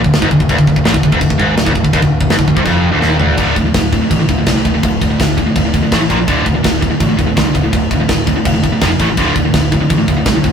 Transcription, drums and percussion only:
0.04 kick
0.13 snare, china
0.22 kick
0.31 kick
0.40 kick
0.49 kick, china
0.58 kick
0.67 kick
0.76 kick
0.85 snare, china
0.94 kick
1.03 kick
1.12 kick
1.21 kick, china
1.30 kick
1.40 kick
1.57 snare, china
1.66 kick
1.75 kick
1.84 kick
1.93 kick, china
2.02 kick
2.21 kick
2.30 snare, china
2.39 kick
2.48 kick
2.57 kick
2.65 kick, china
3.02 snare
3.20 floor tom
3.37 kick, crash
3.56 kick, crash
3.74 kick, snare, crash
3.92 kick, crash
4.11 kick, crash
4.29 kick, crash
4.46 kick, snare, crash
4.65 kick, crash
4.83 kick, crash
5.01 kick, crash
5.20 kick, snare, crash
5.38 kick, crash
5.56 kick, crash
5.74 kick, crash
5.92 kick, snare, crash
6.10 kick, crash
6.28 kick, crash
6.46 kick, crash
6.64 kick, snare, crash
6.82 kick, crash
7.00 kick, crash
7.19 kick, crash
7.37 kick, snare, crash
7.55 kick, crash
7.73 kick, crash
7.91 kick, crash
8.09 kick, snare, crash
8.27 kick, crash
8.45 kick, crash
8.64 kick, crash
8.81 kick, snare, crash
9.00 kick, crash
9.17 kick, crash
9.36 kick, crash
9.54 kick, snare, crash
9.72 kick, crash
9.90 kick, crash
10.08 kick, crash
10.26 kick, snare, crash
10.44 kick, crash

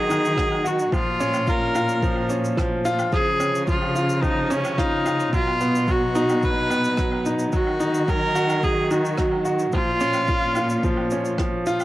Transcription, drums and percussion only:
0.11 low woodblock, shaker
0.25 shaker
0.37 kick, cross-stick, shaker
0.52 low woodblock
0.66 shaker
0.79 shaker
0.92 kick, low woodblock, shaker
1.20 shaker
1.34 low woodblock, shaker
1.47 kick, shaker
1.75 low woodblock, shaker
1.89 shaker
2.03 kick, shaker
2.16 low woodblock
2.30 shaker
2.44 shaker
2.58 kick, cross-stick, low woodblock, shaker
2.85 shaker
2.99 low woodblock, shaker
3.12 kick, shaker
3.40 low woodblock, shaker
3.55 shaker
3.68 kick, shaker
3.82 low woodblock
3.96 shaker
4.10 shaker
4.23 kick, low woodblock, shaker
4.51 shaker
4.65 low woodblock, shaker
4.78 kick, cross-stick, shaker
5.06 low woodblock, shaker
5.20 shaker
5.33 kick, shaker
5.47 low woodblock
5.60 shaker
5.75 shaker
5.88 kick, low woodblock, shaker
6.15 shaker
6.29 low woodblock, shaker
6.43 kick, shaker
6.70 low woodblock, shaker
6.84 shaker
6.97 kick, cross-stick, shaker
7.12 low woodblock
7.26 shaker
7.39 shaker
7.53 kick, shaker
7.67 low woodblock
7.80 shaker
7.94 shaker
8.08 kick, low woodblock, shaker
8.36 shaker
8.50 low woodblock, shaker
8.63 kick, shaker
8.91 low woodblock, shaker
9.05 shaker
9.18 kick, cross-stick, shaker
9.32 low woodblock
9.45 shaker
9.59 shaker
9.72 kick, low woodblock, shaker
10.00 shaker
10.13 low woodblock, shaker
10.28 kick, shaker
10.55 low woodblock, shaker
10.70 shaker
10.83 kick, shaker
10.97 low woodblock
11.11 shaker
11.25 shaker
11.38 kick, cross-stick, low woodblock, shaker
11.66 shaker
11.80 low woodblock, shaker

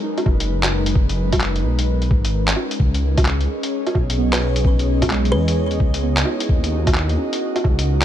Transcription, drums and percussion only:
0.18 closed hi-hat, low woodblock
0.26 kick, low woodblock
0.40 closed hi-hat
0.63 clap, closed hi-hat, low woodblock
0.86 closed hi-hat
0.95 kick
1.09 closed hi-hat
1.32 kick, closed hi-hat, low woodblock
1.41 clap
1.56 closed hi-hat
1.79 closed hi-hat
2.02 closed hi-hat
2.11 kick
2.25 closed hi-hat
2.48 clap, closed hi-hat
2.56 low woodblock
2.71 closed hi-hat
2.80 kick
2.94 closed hi-hat
3.18 kick, closed hi-hat, low woodblock
3.25 clap
3.41 closed hi-hat
3.63 closed hi-hat
3.87 closed hi-hat, low woodblock
3.95 kick, low woodblock
4.10 closed hi-hat
4.33 clap, closed hi-hat, low woodblock
4.56 closed hi-hat
4.65 kick
4.79 closed hi-hat
5.02 kick, closed hi-hat, low woodblock
5.10 clap
5.25 closed hi-hat
5.48 closed hi-hat
5.71 closed hi-hat
5.80 kick
5.94 closed hi-hat
6.17 clap, closed hi-hat
6.25 low woodblock
6.40 closed hi-hat
6.49 kick
6.64 closed hi-hat
6.87 kick, closed hi-hat, low woodblock
6.95 clap
7.09 closed hi-hat
7.33 closed hi-hat
7.56 closed hi-hat, low woodblock
7.64 kick, low woodblock
7.79 closed hi-hat

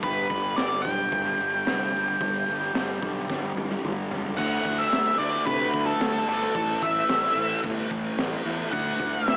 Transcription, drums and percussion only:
0.03 kick, open hi-hat
0.30 kick
0.57 snare, open hi-hat
0.85 kick
1.12 kick, open hi-hat
1.67 snare, open hi-hat
2.21 kick, open hi-hat
2.75 snare, open hi-hat
3.03 kick
3.30 kick, snare
3.57 high tom
3.71 high tom
3.85 mid tom
4.11 floor tom
4.25 floor tom
4.38 kick, crash
4.65 kick, crash
4.93 snare, crash
5.20 crash
5.47 kick, crash
5.74 kick, crash
6.01 snare, crash
6.28 crash
6.55 kick, crash
6.82 kick, crash
7.09 snare, crash
7.37 crash
7.64 kick, crash
7.91 kick, crash
8.18 snare, crash
8.46 crash
8.73 kick, crash
9.00 kick, crash
9.28 snare, crash

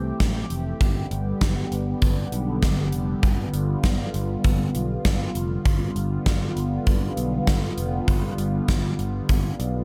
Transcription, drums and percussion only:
0.20 kick, snare, closed hi-hat
0.50 closed hi-hat
0.81 kick, closed hi-hat
1.11 closed hi-hat
1.41 kick, snare, closed hi-hat
1.72 closed hi-hat
2.02 kick, closed hi-hat
2.32 closed hi-hat
2.62 kick, snare, closed hi-hat
2.92 closed hi-hat
3.23 kick, closed hi-hat
3.54 closed hi-hat
3.83 kick, snare, closed hi-hat
4.14 closed hi-hat
4.44 kick, closed hi-hat
4.75 closed hi-hat
5.05 kick, snare, closed hi-hat
5.35 closed hi-hat
5.66 kick, closed hi-hat
5.96 closed hi-hat
6.26 kick, snare, closed hi-hat
6.57 closed hi-hat
6.87 kick, closed hi-hat
7.17 closed hi-hat
7.47 kick, snare, closed hi-hat
7.78 closed hi-hat
8.08 kick, closed hi-hat
8.38 closed hi-hat
8.68 kick, snare, closed hi-hat
8.99 closed hi-hat
9.29 kick, closed hi-hat
9.60 closed hi-hat

